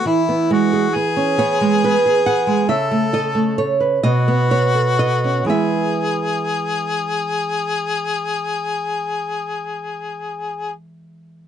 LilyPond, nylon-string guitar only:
\new Staff \with { instrumentName = "Nylon-string guitar" } { \time 12/8 \key e \major \tempo 4. = 41 << { r4. cis''8 b'8 fis''8 e''8 dis''8 cis''8 dis''8 cis''8 dis''8 | e''1~ e''8 r4. | } \\ { e16 b16 gis16 gis'16 b16 cis'16 b16 gis16 b16 gis'16 b16 gis16 cis16 a16 a'16 a16 a'16 b'16 b,16 b16 b'16 a'16 b16 cis'16 | <e gis b>1. | } >> }